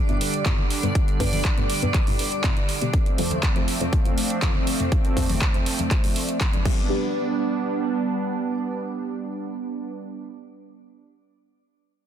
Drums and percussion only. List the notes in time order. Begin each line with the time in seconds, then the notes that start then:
0.09 closed hi-hat
0.21 open hi-hat
0.34 closed hi-hat
0.46 kick, clap, closed hi-hat
0.59 low conga
0.70 open hi-hat
0.83 closed hi-hat
0.95 kick, closed hi-hat
1.08 closed hi-hat
1.20 kick, open hi-hat
1.32 open hi-hat, high conga, low conga
1.45 kick, clap
1.58 closed hi-hat
1.70 open hi-hat
1.82 closed hi-hat, high conga
1.94 kick, clap, closed hi-hat
2.07 open hi-hat
2.19 open hi-hat
2.32 closed hi-hat
2.44 kick, clap, closed hi-hat
2.57 closed hi-hat
2.69 open hi-hat
2.81 closed hi-hat
2.94 kick, closed hi-hat
3.06 closed hi-hat
3.18 open hi-hat
3.30 closed hi-hat, high conga, low conga
3.43 kick, clap, closed hi-hat
3.56 closed hi-hat
3.68 open hi-hat
3.81 closed hi-hat, high conga
3.93 kick, closed hi-hat
4.05 closed hi-hat
4.18 open hi-hat
4.30 closed hi-hat
4.42 kick, clap, closed hi-hat
4.55 low conga
4.67 open hi-hat
4.80 closed hi-hat
4.92 kick, closed hi-hat
5.05 closed hi-hat
5.17 kick, open hi-hat
5.29 open hi-hat, high conga, low conga
5.41 kick, clap, closed hi-hat
5.54 closed hi-hat
5.66 open hi-hat
5.79 closed hi-hat, high conga
5.91 kick, clap, closed hi-hat
6.04 open hi-hat
6.16 open hi-hat
6.29 closed hi-hat
6.41 kick, clap, closed hi-hat
6.53 closed hi-hat, high conga
6.65 kick, crash, high conga